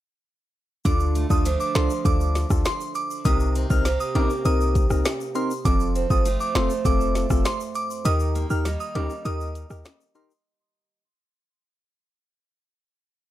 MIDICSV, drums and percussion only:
0, 0, Header, 1, 2, 480
1, 0, Start_track
1, 0, Tempo, 600000
1, 682, Time_signature, 4, 2, 24, 8
1, 10644, End_track
2, 0, Start_track
2, 0, Title_t, "Drums"
2, 681, Note_on_c, 9, 82, 70
2, 682, Note_on_c, 9, 36, 118
2, 683, Note_on_c, 9, 42, 78
2, 761, Note_off_c, 9, 82, 0
2, 762, Note_off_c, 9, 36, 0
2, 763, Note_off_c, 9, 42, 0
2, 800, Note_on_c, 9, 82, 50
2, 880, Note_off_c, 9, 82, 0
2, 924, Note_on_c, 9, 82, 47
2, 925, Note_on_c, 9, 42, 54
2, 1004, Note_off_c, 9, 82, 0
2, 1005, Note_off_c, 9, 42, 0
2, 1042, Note_on_c, 9, 82, 71
2, 1043, Note_on_c, 9, 36, 99
2, 1122, Note_off_c, 9, 82, 0
2, 1123, Note_off_c, 9, 36, 0
2, 1164, Note_on_c, 9, 42, 82
2, 1165, Note_on_c, 9, 82, 67
2, 1244, Note_off_c, 9, 42, 0
2, 1245, Note_off_c, 9, 82, 0
2, 1282, Note_on_c, 9, 82, 56
2, 1362, Note_off_c, 9, 82, 0
2, 1402, Note_on_c, 9, 38, 127
2, 1402, Note_on_c, 9, 42, 56
2, 1408, Note_on_c, 9, 26, 101
2, 1482, Note_off_c, 9, 38, 0
2, 1482, Note_off_c, 9, 42, 0
2, 1488, Note_off_c, 9, 26, 0
2, 1520, Note_on_c, 9, 82, 69
2, 1600, Note_off_c, 9, 82, 0
2, 1641, Note_on_c, 9, 36, 114
2, 1641, Note_on_c, 9, 82, 71
2, 1644, Note_on_c, 9, 42, 88
2, 1721, Note_off_c, 9, 36, 0
2, 1721, Note_off_c, 9, 82, 0
2, 1724, Note_off_c, 9, 42, 0
2, 1764, Note_on_c, 9, 82, 54
2, 1844, Note_off_c, 9, 82, 0
2, 1882, Note_on_c, 9, 42, 55
2, 1883, Note_on_c, 9, 38, 59
2, 1885, Note_on_c, 9, 82, 62
2, 1962, Note_off_c, 9, 42, 0
2, 1963, Note_off_c, 9, 38, 0
2, 1965, Note_off_c, 9, 82, 0
2, 2002, Note_on_c, 9, 82, 76
2, 2003, Note_on_c, 9, 36, 95
2, 2004, Note_on_c, 9, 37, 89
2, 2082, Note_off_c, 9, 82, 0
2, 2083, Note_off_c, 9, 36, 0
2, 2084, Note_off_c, 9, 37, 0
2, 2121, Note_on_c, 9, 82, 67
2, 2123, Note_on_c, 9, 42, 74
2, 2124, Note_on_c, 9, 38, 111
2, 2131, Note_on_c, 9, 26, 91
2, 2201, Note_off_c, 9, 82, 0
2, 2203, Note_off_c, 9, 42, 0
2, 2204, Note_off_c, 9, 38, 0
2, 2211, Note_off_c, 9, 26, 0
2, 2244, Note_on_c, 9, 82, 55
2, 2324, Note_off_c, 9, 82, 0
2, 2359, Note_on_c, 9, 82, 53
2, 2364, Note_on_c, 9, 42, 54
2, 2439, Note_off_c, 9, 82, 0
2, 2444, Note_off_c, 9, 42, 0
2, 2484, Note_on_c, 9, 82, 77
2, 2564, Note_off_c, 9, 82, 0
2, 2600, Note_on_c, 9, 82, 70
2, 2602, Note_on_c, 9, 36, 119
2, 2603, Note_on_c, 9, 42, 80
2, 2680, Note_off_c, 9, 82, 0
2, 2682, Note_off_c, 9, 36, 0
2, 2683, Note_off_c, 9, 42, 0
2, 2720, Note_on_c, 9, 82, 53
2, 2800, Note_off_c, 9, 82, 0
2, 2844, Note_on_c, 9, 82, 49
2, 2845, Note_on_c, 9, 42, 55
2, 2924, Note_off_c, 9, 82, 0
2, 2925, Note_off_c, 9, 42, 0
2, 2962, Note_on_c, 9, 82, 75
2, 2963, Note_on_c, 9, 36, 99
2, 3042, Note_off_c, 9, 82, 0
2, 3043, Note_off_c, 9, 36, 0
2, 3081, Note_on_c, 9, 38, 70
2, 3085, Note_on_c, 9, 42, 76
2, 3085, Note_on_c, 9, 82, 66
2, 3161, Note_off_c, 9, 38, 0
2, 3165, Note_off_c, 9, 42, 0
2, 3165, Note_off_c, 9, 82, 0
2, 3202, Note_on_c, 9, 82, 55
2, 3282, Note_off_c, 9, 82, 0
2, 3322, Note_on_c, 9, 42, 58
2, 3323, Note_on_c, 9, 65, 77
2, 3402, Note_off_c, 9, 42, 0
2, 3403, Note_off_c, 9, 65, 0
2, 3440, Note_on_c, 9, 82, 69
2, 3520, Note_off_c, 9, 82, 0
2, 3562, Note_on_c, 9, 82, 70
2, 3564, Note_on_c, 9, 42, 87
2, 3642, Note_off_c, 9, 82, 0
2, 3644, Note_off_c, 9, 42, 0
2, 3685, Note_on_c, 9, 82, 56
2, 3765, Note_off_c, 9, 82, 0
2, 3802, Note_on_c, 9, 42, 57
2, 3804, Note_on_c, 9, 36, 103
2, 3805, Note_on_c, 9, 82, 59
2, 3882, Note_off_c, 9, 42, 0
2, 3884, Note_off_c, 9, 36, 0
2, 3885, Note_off_c, 9, 82, 0
2, 3922, Note_on_c, 9, 82, 74
2, 3923, Note_on_c, 9, 37, 93
2, 4002, Note_off_c, 9, 82, 0
2, 4003, Note_off_c, 9, 37, 0
2, 4042, Note_on_c, 9, 65, 48
2, 4042, Note_on_c, 9, 82, 69
2, 4043, Note_on_c, 9, 42, 76
2, 4044, Note_on_c, 9, 38, 113
2, 4051, Note_on_c, 9, 26, 86
2, 4122, Note_off_c, 9, 65, 0
2, 4122, Note_off_c, 9, 82, 0
2, 4123, Note_off_c, 9, 42, 0
2, 4124, Note_off_c, 9, 38, 0
2, 4131, Note_off_c, 9, 26, 0
2, 4165, Note_on_c, 9, 82, 54
2, 4245, Note_off_c, 9, 82, 0
2, 4280, Note_on_c, 9, 82, 50
2, 4284, Note_on_c, 9, 42, 56
2, 4360, Note_off_c, 9, 82, 0
2, 4364, Note_off_c, 9, 42, 0
2, 4405, Note_on_c, 9, 82, 79
2, 4485, Note_off_c, 9, 82, 0
2, 4522, Note_on_c, 9, 36, 120
2, 4522, Note_on_c, 9, 82, 71
2, 4523, Note_on_c, 9, 42, 76
2, 4602, Note_off_c, 9, 36, 0
2, 4602, Note_off_c, 9, 82, 0
2, 4603, Note_off_c, 9, 42, 0
2, 4640, Note_on_c, 9, 82, 52
2, 4720, Note_off_c, 9, 82, 0
2, 4765, Note_on_c, 9, 42, 55
2, 4765, Note_on_c, 9, 82, 49
2, 4845, Note_off_c, 9, 42, 0
2, 4845, Note_off_c, 9, 82, 0
2, 4883, Note_on_c, 9, 36, 99
2, 4883, Note_on_c, 9, 82, 72
2, 4963, Note_off_c, 9, 36, 0
2, 4963, Note_off_c, 9, 82, 0
2, 5005, Note_on_c, 9, 42, 77
2, 5005, Note_on_c, 9, 82, 66
2, 5085, Note_off_c, 9, 42, 0
2, 5085, Note_off_c, 9, 82, 0
2, 5123, Note_on_c, 9, 82, 56
2, 5203, Note_off_c, 9, 82, 0
2, 5242, Note_on_c, 9, 38, 122
2, 5242, Note_on_c, 9, 42, 57
2, 5248, Note_on_c, 9, 26, 105
2, 5322, Note_off_c, 9, 38, 0
2, 5322, Note_off_c, 9, 42, 0
2, 5328, Note_off_c, 9, 26, 0
2, 5360, Note_on_c, 9, 82, 68
2, 5440, Note_off_c, 9, 82, 0
2, 5481, Note_on_c, 9, 36, 112
2, 5481, Note_on_c, 9, 82, 69
2, 5484, Note_on_c, 9, 42, 88
2, 5561, Note_off_c, 9, 36, 0
2, 5561, Note_off_c, 9, 82, 0
2, 5564, Note_off_c, 9, 42, 0
2, 5604, Note_on_c, 9, 82, 56
2, 5684, Note_off_c, 9, 82, 0
2, 5722, Note_on_c, 9, 42, 56
2, 5723, Note_on_c, 9, 38, 62
2, 5724, Note_on_c, 9, 82, 59
2, 5802, Note_off_c, 9, 42, 0
2, 5803, Note_off_c, 9, 38, 0
2, 5804, Note_off_c, 9, 82, 0
2, 5841, Note_on_c, 9, 82, 75
2, 5843, Note_on_c, 9, 36, 102
2, 5843, Note_on_c, 9, 37, 97
2, 5921, Note_off_c, 9, 82, 0
2, 5923, Note_off_c, 9, 36, 0
2, 5923, Note_off_c, 9, 37, 0
2, 5960, Note_on_c, 9, 82, 66
2, 5962, Note_on_c, 9, 42, 76
2, 5964, Note_on_c, 9, 38, 115
2, 5970, Note_on_c, 9, 26, 86
2, 6040, Note_off_c, 9, 82, 0
2, 6042, Note_off_c, 9, 42, 0
2, 6044, Note_off_c, 9, 38, 0
2, 6050, Note_off_c, 9, 26, 0
2, 6083, Note_on_c, 9, 82, 53
2, 6163, Note_off_c, 9, 82, 0
2, 6199, Note_on_c, 9, 82, 52
2, 6203, Note_on_c, 9, 42, 54
2, 6279, Note_off_c, 9, 82, 0
2, 6283, Note_off_c, 9, 42, 0
2, 6324, Note_on_c, 9, 82, 75
2, 6404, Note_off_c, 9, 82, 0
2, 6440, Note_on_c, 9, 82, 75
2, 6443, Note_on_c, 9, 42, 80
2, 6520, Note_off_c, 9, 82, 0
2, 6523, Note_off_c, 9, 42, 0
2, 6559, Note_on_c, 9, 82, 52
2, 6639, Note_off_c, 9, 82, 0
2, 6683, Note_on_c, 9, 82, 50
2, 6685, Note_on_c, 9, 42, 52
2, 6763, Note_off_c, 9, 82, 0
2, 6765, Note_off_c, 9, 42, 0
2, 6803, Note_on_c, 9, 82, 72
2, 6883, Note_off_c, 9, 82, 0
2, 6922, Note_on_c, 9, 38, 69
2, 6925, Note_on_c, 9, 82, 69
2, 6926, Note_on_c, 9, 42, 74
2, 7002, Note_off_c, 9, 38, 0
2, 7005, Note_off_c, 9, 82, 0
2, 7006, Note_off_c, 9, 42, 0
2, 7043, Note_on_c, 9, 82, 57
2, 7123, Note_off_c, 9, 82, 0
2, 7162, Note_on_c, 9, 42, 58
2, 7162, Note_on_c, 9, 65, 73
2, 7242, Note_off_c, 9, 42, 0
2, 7242, Note_off_c, 9, 65, 0
2, 7280, Note_on_c, 9, 82, 71
2, 7360, Note_off_c, 9, 82, 0
2, 7401, Note_on_c, 9, 82, 72
2, 7404, Note_on_c, 9, 42, 92
2, 7481, Note_off_c, 9, 82, 0
2, 7484, Note_off_c, 9, 42, 0
2, 7524, Note_on_c, 9, 82, 56
2, 7604, Note_off_c, 9, 82, 0
2, 7642, Note_on_c, 9, 42, 55
2, 7645, Note_on_c, 9, 82, 59
2, 7722, Note_off_c, 9, 42, 0
2, 7725, Note_off_c, 9, 82, 0
2, 7762, Note_on_c, 9, 82, 78
2, 7763, Note_on_c, 9, 37, 91
2, 7842, Note_off_c, 9, 82, 0
2, 7843, Note_off_c, 9, 37, 0
2, 7880, Note_on_c, 9, 65, 48
2, 7880, Note_on_c, 9, 82, 70
2, 7883, Note_on_c, 9, 42, 76
2, 7885, Note_on_c, 9, 38, 113
2, 7891, Note_on_c, 9, 26, 90
2, 7960, Note_off_c, 9, 65, 0
2, 7960, Note_off_c, 9, 82, 0
2, 7963, Note_off_c, 9, 42, 0
2, 7965, Note_off_c, 9, 38, 0
2, 7971, Note_off_c, 9, 26, 0
2, 8004, Note_on_c, 9, 82, 56
2, 8084, Note_off_c, 9, 82, 0
2, 8119, Note_on_c, 9, 82, 50
2, 8123, Note_on_c, 9, 42, 55
2, 8199, Note_off_c, 9, 82, 0
2, 8203, Note_off_c, 9, 42, 0
2, 8244, Note_on_c, 9, 82, 76
2, 8324, Note_off_c, 9, 82, 0
2, 10644, End_track
0, 0, End_of_file